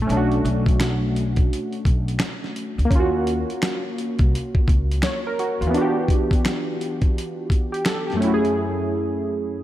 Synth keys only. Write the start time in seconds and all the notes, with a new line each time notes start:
0.02 A3
0.07 C#4
0.12 D4
0.17 F#4
2.85 A#3
2.90 C#4
2.95 F4
3.00 F#4
5.04 C#5
5.27 A#4
5.40 F#4
5.61 F4
5.67 E3 B3
5.74 D4 F#4
5.81 G4
7.72 G4
7.86 A4
8.07 G4
8.13 F#2 A3
8.20 C#4 E4
8.27 F#4
8.34 G#4